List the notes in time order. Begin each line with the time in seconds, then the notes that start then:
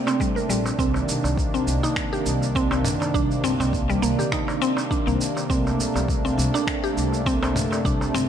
Already playing: C3 A3 C4 D4
0.07 C4, darbuka tek, shaker
0.20 G3, kick, shaker
0.36 A#4, shaker
0.49 A#1 G3, shaker
0.66 darbuka tek, shaker
0.79 C2 C3 D#3 A#3 C4, kick, shaker
0.94 darbuka tek, shaker
1.08 C2, darbuka ka, shaker
1.24 C2, darbuka ka, shaker
1.37 kick, shaker
1.54 C4, shaker
1.67 C2, shaker
1.83 D#4, darbuka ka, shaker
1.96 finger snap, kick, shaker
2.13 G4, shaker
2.26 C2, shaker
2.42 darbuka ka, shaker
2.55 C4, kick, shaker
2.71 C4, darbuka tek, shaker
2.85 A#1, mid tom, shaker
3.01 darbuka ka, darbuka tek, shaker
3.14 C2 D4, kick, shaker
3.31 shaker
3.44 C2 C4, mid tom, shaker
3.59 C2 C4, darbuka ka, shaker
3.73 kick, shaker
3.89 G3, shaker
4.02 C2 A#3, shaker
4.19 G4, darbuka ka, darbuka dum, shaker
4.32 D#4, finger snap, kick, shaker
4.48 darbuka tek, shaker
4.62 C4, shaker
4.77 darbuka tek, shaker
4.91 D4, kick, shaker
5.07 C2 A#3, shaker
5.21 shaker
5.37 darbuka tek, shaker
5.50 C2 A3 C4, kick, shaker
5.67 darbuka tek, shaker
5.79 C2, darbuka ka, shaker
5.95 C2, darbuka ka, shaker
6.08 kick, shaker
6.25 C4, shaker
6.38 C2, shaker
6.54 D4, darbuka ka, shaker
6.67 finger snap, kick, shaker
6.84 G4, shaker
6.97 C2, shaker
7.13 darbuka ka, shaker
7.26 C4, kick, shaker
7.42 C4, darbuka tek, shaker
7.55 A#1, mid tom, shaker
7.72 darbuka ka, darbuka tek, shaker
7.85 C2 C4 D4, kick, shaker
8.01 darbuka tek, shaker
8.14 C2 C4, mid tom, darbuka ka, shaker